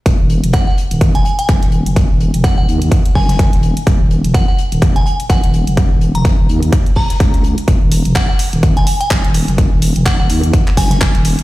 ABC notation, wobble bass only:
X:1
M:4/4
L:1/16
Q:"Swing 16ths" 1/4=126
K:Ebm
V:1 name="Wobble bass" clef=bass
E,,, E,,,2 F,,,2 z2 E,,,3 z2 F,,, E,,,2 G,,,- | G,,, E,,,2 F,,,2 E,,, E,,2 z2 G,,,3 E,,,2 z | E,,, E,,,2 F,,,2 z2 E,,,3 z2 F,,, E,,,2 G,,,- | G,,, E,,,2 F,,,2 E,,, E,,2 z4 D,,3 z |
E,,, E,,,2 F,,,2 z2 E,,,3 z2 F,,, E,,,2 G,,,- | G,,, E,,,2 F,,,2 E,,, E,,2 z2 G,,,3 E,,,2 z |]